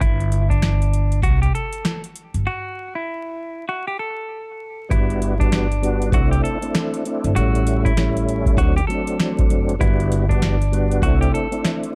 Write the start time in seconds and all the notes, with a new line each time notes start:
0.01 G1 E4, kick, closed hi-hat
0.20 closed hi-hat
0.32 closed hi-hat
0.50 D4, kick, closed hi-hat
0.62 snare, closed hi-hat
0.82 closed hi-hat
0.93 closed hi-hat
1.12 closed hi-hat
1.22 C2 F#4, kick, closed hi-hat
1.42 G4, closed hi-hat
1.55 A4, closed hi-hat
1.73 closed hi-hat
1.85 snare, closed hi-hat
2.04 closed hi-hat
2.16 closed hi-hat
2.34 G1, closed hi-hat
2.47 F#4
2.95 E4
3.69 F#4
3.88 G4
3.99 A4
4.89 G1 G3 B3 D4 E4 F#4, kick, closed hi-hat
5.10 closed hi-hat
5.22 closed hi-hat
5.38 G3 B3 D4 F#4, kick, closed hi-hat
5.52 snare, closed hi-hat
5.72 closed hi-hat
5.82 G3 B3 D4 F#4, closed hi-hat
6.02 closed hi-hat
6.12 C2 A3 C4 D4 E4 F#4, kick, closed hi-hat
6.31 G4, closed hi-hat
6.44 A4, closed hi-hat
6.61 A3 C4 D4 E4, closed hi-hat
6.75 A3 C4 D4 E4, snare, closed hi-hat
6.94 closed hi-hat
7.05 A3 C4 D4 E4, closed hi-hat
7.24 G1, closed hi-hat
7.35 A1 G3 A3 C#4 E4 F#4, closed hi-hat
7.55 closed hi-hat
7.67 closed hi-hat
7.85 E4, kick, closed hi-hat
7.97 G3 A3 C#4 E4, snare, closed hi-hat
8.17 closed hi-hat
8.29 closed hi-hat
8.46 kick, closed hi-hat
8.57 D2 F#3 A3 C4 D4 F#4, kick, closed hi-hat
8.76 G4, closed hi-hat
8.87 F#3 A3 C4 D4 A4, closed hi-hat
9.07 closed hi-hat
9.20 snare, closed hi-hat
9.39 kick, closed hi-hat
9.50 F#1, closed hi-hat
9.69 closed hi-hat
9.79 G1 G3 B3 D4 E4 F#4, kick, closed hi-hat
10.00 closed hi-hat
10.12 closed hi-hat
10.28 G3 B3 D4 F#4, kick, closed hi-hat
10.42 snare, closed hi-hat
10.62 closed hi-hat
10.72 G3 B3 D4 F#4, closed hi-hat
10.91 closed hi-hat
11.02 C2 A3 C4 D4 E4 F#4, kick, closed hi-hat
11.21 G4, closed hi-hat
11.34 A4, closed hi-hat
11.51 A3 C4 D4 E4, closed hi-hat
11.65 A3 C4 D4 E4, snare, closed hi-hat
11.83 closed hi-hat